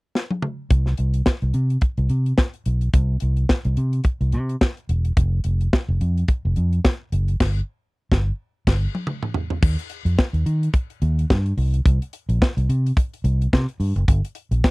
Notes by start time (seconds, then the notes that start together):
0.15 snare
0.31 high tom
0.42 mid tom
0.70 C2, kick, closed hi-hat
0.86 snare
0.97 C2, closed hi-hat
1.14 closed hi-hat
1.26 kick, snare
1.42 C2, closed hi-hat
1.54 C3, closed hi-hat
1.70 closed hi-hat
1.81 kick, closed hi-hat
1.97 C2, closed hi-hat
2.09 C3, closed hi-hat
2.26 closed hi-hat
2.38 kick, snare
2.54 closed hi-hat
2.66 B1, closed hi-hat
2.81 closed hi-hat
2.93 C2, kick, closed hi-hat
3.20 C2, closed hi-hat
3.37 closed hi-hat
3.49 kick, snare
3.65 C2, closed hi-hat
3.77 C3, closed hi-hat
3.93 closed hi-hat
4.04 kick, closed hi-hat
4.21 C2, closed hi-hat
4.32 C3, closed hi-hat
4.49 closed hi-hat
4.61 kick, snare
4.77 closed hi-hat
4.89 E1, closed hi-hat
5.05 closed hi-hat
5.17 F1, kick, closed hi-hat
5.44 F1, closed hi-hat
5.61 closed hi-hat
5.73 kick, snare
5.88 F1
6.01 F2, closed hi-hat
6.18 closed hi-hat
6.28 kick, closed hi-hat
6.45 F1
6.56 F2, closed hi-hat
6.73 closed hi-hat
6.85 kick, snare
7.12 F#1, closed hi-hat
7.28 closed hi-hat
7.40 G1, kick, snare, crash
8.12 G1, kick, snare
8.67 G1, kick, snare, crash
8.95 high tom
9.07 mid tom
9.23 mid tom
9.34 floor tom
9.50 floor tom
9.62 D#2, kick, crash
9.79 closed hi-hat
9.90 closed hi-hat
10.05 F2, closed hi-hat
10.19 kick, snare
10.33 D#2, closed hi-hat
10.46 D#3, closed hi-hat
10.63 closed hi-hat
10.73 kick, closed hi-hat
10.90 closed hi-hat
11.02 D#2, closed hi-hat
11.19 closed hi-hat
11.30 G2, kick, snare
11.46 closed hi-hat
11.57 C2, open hi-hat
11.74 closed hi-hat
11.86 C2, kick, closed hi-hat
12.02 closed hi-hat
12.13 closed hi-hat
12.29 A#1, closed hi-hat
12.42 kick, snare
12.57 C2, closed hi-hat
12.69 C3, closed hi-hat
12.86 closed hi-hat
12.97 kick, closed hi-hat
13.13 closed hi-hat
13.24 C2, closed hi-hat
13.42 closed hi-hat
13.53 C3, kick, snare
13.68 closed hi-hat
13.80 G2, open hi-hat
13.96 F#1, closed hi-hat
14.08 G1, kick, closed hi-hat
14.25 closed hi-hat
14.35 closed hi-hat
14.51 A#1, closed hi-hat
14.64 kick, snare